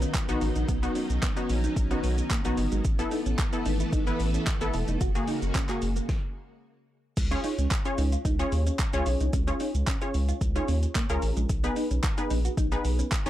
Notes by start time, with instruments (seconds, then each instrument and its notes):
Already playing: string machine D#3 F#3 B3 D#4, synth pluck B3 D#4 F4
0.02 clean electric guitar C#4, closed hi-hat, shaker
0.14 muted clean electric guitar stroke, kick, clap, closed hi-hat, shaker
0.29 sub bass A#1, synth pluck B3 D#4 F#4, closed hi-hat, shaker
0.41 sub bass A1, clean electric guitar F#4, open hi-hat, shaker
0.56 sub bass A#1, clean electric guitar D#4, closed hi-hat, shaker
0.68 sub bass B1, clean electric guitar B3, string machine C#4, kick, closed hi-hat, shaker
0.83 synth pluck B3 D#4 F#4, muted clean electric guitar stroke, closed hi-hat, shaker
0.95 clean electric guitar C#4, open hi-hat, shaker
1.10 sub bass B1, closed hi-hat, shaker
1.23 clean electric guitar B3, kick, clap, closed hi-hat, shaker
1.37 synth pluck B3 D#4 F#4, closed hi-hat, shaker
1.49 sub bass A#1, muted clean electric guitar stroke, open hi-hat, shaker
1.64 clean electric guitar D#4, closed hi-hat, shaker
1.76 sub bass A#1, muted clean electric guitar stroke, kick, closed hi-hat, shaker
1.91 synth pluck B3 D#4 F#4, clean electric guitar C#4, closed hi-hat, shaker
2.04 sub bass B1, clean electric guitar B3, open hi-hat, shaker
2.18 closed hi-hat, shaker
2.31 clean electric guitar A#3, kick, clap, closed hi-hat, shaker
2.45 sub bass A#1, synth pluck B3 D#4 F#4, muted clean electric guitar stroke, closed hi-hat, shaker
2.57 sub bass G1, open hi-hat, shaker
2.72 sub bass G#1, clean electric guitar G#3, closed hi-hat, shaker
2.85 sub bass A1, string machine E3 A3 B3 A4, kick, closed hi-hat, shaker
2.99 synth pluck B3 E4 A4, muted clean electric guitar stroke, closed hi-hat, shaker
3.11 clean electric guitar D#4, open hi-hat, shaker
3.26 sub bass A1, clean electric guitar C#4, closed hi-hat, shaker
3.39 muted clean electric guitar stroke, kick, clap, closed hi-hat, shaker
3.53 synth pluck B3 E4 A4, closed hi-hat, shaker
3.66 sub bass G#1, clean electric guitar D#4, open hi-hat, shaker
3.80 clean electric guitar E4, closed hi-hat, shaker
3.92 sub bass G#1, clean electric guitar D#4, kick, closed hi-hat, shaker
4.07 synth pluck B3 E4 B4, closed hi-hat, shaker
4.20 sub bass A1, open hi-hat, shaker
4.34 clean electric guitar C#4, closed hi-hat, shaker
4.47 muted clean electric guitar stroke, kick, clap, closed hi-hat, shaker
4.61 sub bass G#1, synth pluck B3 E4 A4, closed hi-hat, shaker
4.74 sub bass E1, clean electric guitar E4, open hi-hat, shaker
4.88 sub bass F1, clean electric guitar D#4, closed hi-hat, shaker
5.01 sub bass F#1, string machine C#3 G#3 A#3 F#4, clean electric guitar F#4, kick, closed hi-hat, shaker
5.15 synth pluck A#3 F#4 G#4, muted clean electric guitar stroke, closed hi-hat, shaker
5.28 clean electric guitar D#4, open hi-hat, shaker
5.42 sub bass F#1, closed hi-hat, shaker
5.55 clean electric guitar C#4, kick, clap, closed hi-hat, shaker
5.69 synth pluck A#3 F#4 G#4, clap, closed hi-hat, shaker
5.82 sub bass F#1, muted clean electric guitar stroke, open hi-hat, shaker
5.96 clean electric guitar A#3, closed hi-hat, shaker
6.09 kick, snare
7.17 sub bass C#2, kick, closed hi-hat, crash, shaker
7.31 synth pluck C#4 F4 G#4 C#5, muted clean electric guitar stroke, closed hi-hat, shaker
7.44 clean electric guitar D#4, open hi-hat, shaker
7.58 sub bass C#2, clean electric guitar C#4, closed hi-hat, shaker
7.71 muted clean electric guitar stroke, kick, clap, closed hi-hat, shaker
7.85 synth pluck C#4 F4 G#4 C#5, closed hi-hat, shaker
7.98 sub bass C#2, clean electric guitar D#4, open hi-hat, shaker
8.12 clean electric guitar F4, closed hi-hat, shaker
8.25 sub bass C#2, clean electric guitar D#4, kick, closed hi-hat, shaker
8.39 synth pluck C#4 F4 G#4 C#5, muted clean electric guitar stroke, closed hi-hat, shaker
8.52 sub bass D#2, open hi-hat, shaker
8.67 clean electric guitar C#4, closed hi-hat, shaker
8.79 muted clean electric guitar stroke, kick, clap, closed hi-hat, shaker
8.93 sub bass C#2, synth pluck C#4 F4 G#4 C#5, closed hi-hat, shaker
9.06 sub bass B1, clean electric guitar F4, open hi-hat, shaker
9.20 sub bass C2, clean electric guitar D#4, closed hi-hat, shaker
9.33 sub bass C#2, clean electric guitar C#4, kick, closed hi-hat, shaker
9.47 synth pluck C#4 F4 G#4 C#5, muted clean electric guitar stroke, closed hi-hat, shaker
9.60 clean electric guitar D#4, open hi-hat, shaker
9.75 sub bass C#2, closed hi-hat, shaker
9.87 clean electric guitar C#4, kick, clap, closed hi-hat, shaker
10.01 synth pluck C#4 F4 G#4 C#5, closed hi-hat, shaker
10.14 sub bass C#2, muted clean electric guitar stroke, open hi-hat, shaker
10.29 clean electric guitar F4, closed hi-hat, shaker
10.41 sub bass C#2, muted clean electric guitar stroke, kick, closed hi-hat, shaker
10.56 synth pluck C#4 F4 G#4 C#5, clean electric guitar D#4, closed hi-hat, shaker
10.68 sub bass D#2, clean electric guitar C#4, open hi-hat, shaker
10.83 closed hi-hat, shaker
10.95 clean electric guitar A#3, kick, clap, closed hi-hat, shaker
11.10 sub bass C#2, synth pluck C#4 F4 G#4 A#4, closed hi-hat, shaker
11.22 sub bass A1, open hi-hat, shaker
11.37 sub bass A#1, clean electric guitar G#3, closed hi-hat, shaker
11.49 sub bass B1, kick, closed hi-hat, shaker
11.64 synth pluck B3 D#4 G#4 B4, muted clean electric guitar stroke, closed hi-hat, shaker
11.76 clean electric guitar D#4, open hi-hat, shaker
11.91 sub bass B1, clean electric guitar C#4, closed hi-hat, shaker
12.03 muted clean electric guitar stroke, kick, clap, closed hi-hat, shaker
12.18 synth pluck B3 D#4 G#4 B4, closed hi-hat, shaker
12.30 sub bass A#1, clean electric guitar D#4, open hi-hat, shaker
12.45 clean electric guitar F#4, closed hi-hat, shaker
12.57 sub bass A#1, clean electric guitar D#4, kick, closed hi-hat, shaker
12.72 synth pluck B3 D#4 G#4 B4, muted clean electric guitar stroke, closed hi-hat, shaker
12.85 sub bass B1, open hi-hat, shaker
12.99 clean electric guitar C#4, closed hi-hat, shaker
13.12 muted clean electric guitar stroke, kick, clap, closed hi-hat, shaker
13.26 sub bass A#1, synth pluck B3 D#4 G#4 C#5, closed hi-hat, shaker